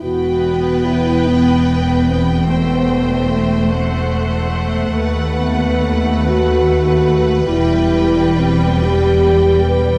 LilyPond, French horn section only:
\new Staff \with { instrumentName = "French horn section" } { \time 6/8 \key e \minor \tempo 4. = 49 fis'4 e'8 b4 c'8 | b4 a8 c'8 r4 | r8 b4 fis'4. | e'4 c'8 g'4 b'8 | }